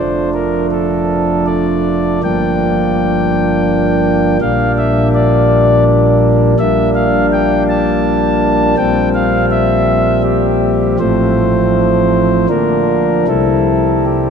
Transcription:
pipe organ
Already playing: C5
0.00 F1 F2 F3 A3 D4
0.34 A#4
0.71 A4
1.46 D5
2.23 G1 G2 F3 A#3 D4 G5
4.41 A#1 A#2 G3 A#3 D4 F5
4.78 E5
5.15 D5
6.59 A#1 A#2 G3 A#3 D4 E5
6.95 F5
7.32 G5
7.69 A5
8.77 A#1 A#2 G3 C4 G5
9.14 F5
9.51 E5
10.23 G4
10.99 A1 A2 F3 A3 C4 C5
12.49 D3 F3 A#3 D4 A#4
13.27 C2 C3 G3 C4 E4 A4
14.06 G4

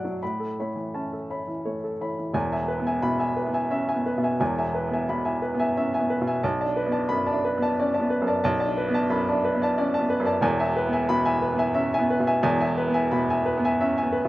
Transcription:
upright piano
Already playing: B2 F#3 A3 A4 D5 F#5 A5 F#6 D7
0.05 F#3
0.23 A2 B5
0.40 A4
0.60 A3 C#5 B5
0.76 E3
0.94 C#4 A5
1.13 A4
1.30 C#5 B5
1.47 E3
1.65 A3 C#5
1.84 A4
2.01 E3 C#5 B5
2.19 E3
2.34 E1 E2 G#5
2.52 E5 G#5
2.68 B4
2.80 B3
2.86 E5 G#5
3.02 B2 B5
3.19 E5 G#5
3.37 B4
3.47 B3
3.54 E5 G#5
3.70 C#4 E5
3.88 E5 G#5
3.94 B3
4.06 B4
4.18 B2
4.23 E5 G#5
4.40 E1 E2 G#5
4.58 E5 G#5
4.74 B4
4.89 B3
4.93 E5 G#5
5.09 B2 B5
5.25 E5 G#5
5.42 B4
5.54 B3
5.60 E5 G#5
5.77 C#4 E5
5.94 E5 G#5
5.99 B3
6.10 B4
6.21 B2
6.27 E5 G#5
6.43 B1 A5
6.61 D5 A5
6.65 D4
6.76 B4
6.86 B3
6.91 D5 A5
7.09 F#2 B5
7.26 D5 A5
7.33 D4
7.45 B4
7.58 B3
7.62 D5 A5
7.80 C#4 D5
7.94 D5 A5
8.00 B3
8.10 B4
8.22 F#2
8.27 D5 A5
8.44 B1 A5
8.59 D5 A5
8.66 D4
8.77 B4
8.88 B3
8.94 D5 A5
9.10 F#2 B5
9.27 D5 A5
9.32 D4
9.45 B4
9.55 B3
9.62 D5 A5
9.78 C#4 D5
9.94 D5 A5
9.99 B3
10.10 B4
10.20 F#2
10.25 D5 A5
10.41 E1 E2 G#5
10.60 E5 G#5
10.76 B4
10.87 B3
10.93 E5 G#5
11.09 B2 B5
11.25 E5 G#5
11.42 B4
11.53 B3
11.58 E5 G#5
11.74 C#4 E5
11.93 E5 G#5
11.99 B3
12.10 B4
12.20 B2
12.27 E5 G#5
12.43 E1 E2 G#5
12.61 E5 G#5
12.78 B4
12.88 B3
12.94 E5 G#5
13.11 B2 B5
13.30 E5 G#5
13.46 B4
13.58 B3
13.65 E5 G#5
13.81 C#4 E5
13.97 E5 G#5
14.03 B3
14.13 B4
14.25 B2

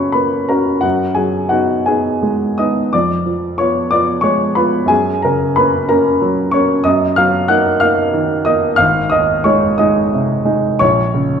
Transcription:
grand piano
Already playing: F#2 C#3 C#4 F#4 B4 C#5 B5 C#6
0.12 A#3 B4 B5
0.49 C#4 F#4 A#4 A#5
0.81 F#2 F#4 F#5
1.15 F#3 G#4 G#5
1.49 B3 D#4 F#4 F#5
1.86 B3 D#4 G#4 G#5
2.23 G#3
2.58 B3 D#4 D#5 D#6
2.93 F2 D5 D6
3.26 F3
3.58 B3 F4 C#5 C#6
3.91 B3 F4 D5 D6
4.21 G#3 C#5 C#6
4.55 B3 F4 B4 B5
4.85 F#2 G#5
4.89 G#4
5.22 C#3 A#4 A#5
5.56 A#3 C#4 B4 B5
5.89 A#3 C#4 A#4 A#5
6.22 F#3
6.51 A#3 C#4 C#5 C#6
6.84 F#2 D#5 D#6
7.16 F#3 F5 F6
7.48 A#3 D#4 F#5 F#6
7.80 A#3 D#4 F5 F6
8.14 D#3
8.45 A#3 D#4 D#5 D#6
8.76 G#1 F5 F6
9.10 D#2 D#5 D#6
9.44 G#3 D#4 C#5 C#6
9.78 G#3 D#4 D#5 D#6
10.13 C3
10.45 G#3 D#4
10.79 A#1 C#5 C#6
11.14 C#3

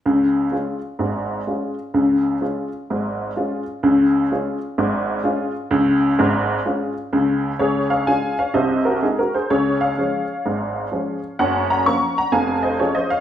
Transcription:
honky-tonk piano
0.06 C#2 C#3
0.52 G#3 C#4 F4
0.99 G#1 G#2
1.47 G#3 C#4 F4
1.94 C#2 C#3
2.41 G#3 C#4 F4
2.90 G#1 G#2
3.36 G#3 C#4 F4
3.83 C#2 C#3
4.32 G#3 C#4 F4
4.78 G#1 G#2
5.24 G#3 C#4 F4
5.71 C#2 C#3
6.19 G#1 G#2
6.66 G#3 C#4 F4
7.13 C#2 C#3
7.59 C#2 C#3 G#4 C#5
7.90 C#5 F5
8.07 G#3 C#4 F4 F5 G#5
8.39 C#5 F5
8.54 C2 C3 C5 D#5
8.85 F#4 A#4
9.03 G#3 D#4 G#4
9.19 F#4 A#4
9.34 G#4 C5
9.50 C#2 C#3 G#4 C#5
9.81 C#5 F5
9.98 F3 G#3 C#4
10.46 G#1 G#2
10.92 F3 G#3 C#4
11.39 F#1 F#2 C#5 F#5
11.70 F#5 A#5
11.86 F3 A#3 C#4 A#5 C#6
12.18 F#5 A#5
12.32 F1 F2 F5 G#5
12.63 C5 D#5
12.79 F3 C#4 F4 G#4 C#5
12.95 C5 D#5
13.10 C#5 F5

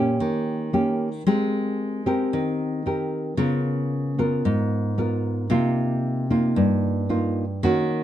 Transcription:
nylon-string guitar
Already playing: A#2 A#3 C#4 G4
0.20 D#3
0.73 A#3 C#4 G4
1.27 G#3 C4 G4 A#4
2.06 C4 G4 A#4
2.33 D#3
2.86 C4 G4 A#4
3.37 C#3 B3 F4 A#4
4.18 B3 F4 A#4
4.45 G#2
4.98 B3 F4 A#4
5.50 C3 A#3 D#4 F4
6.30 A#3 D#4 F4
6.56 G2
7.09 A#3 D#4 F4
7.63 D#3 A#3 C#4 F#4

